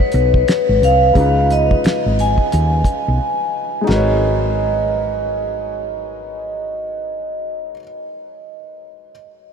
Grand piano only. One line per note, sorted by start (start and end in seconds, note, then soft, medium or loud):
0.00 1.10 G#3 medium
0.00 1.11 D#4 soft
0.00 1.11 F#4 soft
0.00 1.12 G#4 soft
0.00 1.13 B4 medium
0.00 1.13 C#5 medium
1.13 3.83 C#3 medium
1.13 3.80 G#3 soft
1.13 3.83 D#4 medium
1.18 3.85 F4 medium
1.18 3.86 B4 medium
3.81 7.69 G#3 medium
3.81 7.72 D#4 medium
3.87 7.75 F#4 medium
3.87 7.77 A#4 medium
3.93 7.80 B4 medium
3.93 7.83 C#5 medium